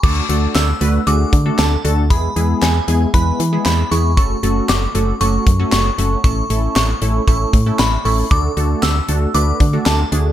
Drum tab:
CC |x-------|--------|--------|--------|
HH |-xxxxxxx|xxxxxxxx|xxxxxxxx|xxxxxxxo|
CP |--x---x-|--x---x-|--x---x-|--x---x-|
SD |--o---o-|--o---o-|--o---o-|--o---o-|
BD |o----o--|o---o---|o----o--|o---oo--|

CC |--------|
HH |xxxxxxxx|
CP |--x---x-|
SD |--o---o-|
BD |o----o--|